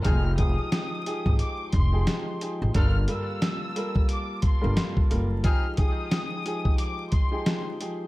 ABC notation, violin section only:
X:1
M:4/4
L:1/16
Q:"Swing 16ths" 1/4=89
K:Gphr
V:1 name="Violin section"
f'2 e'6 d'2 c'3 z3 | f'2 =e'6 d'2 c'3 z3 | f'2 e'6 d'2 c'3 z3 |]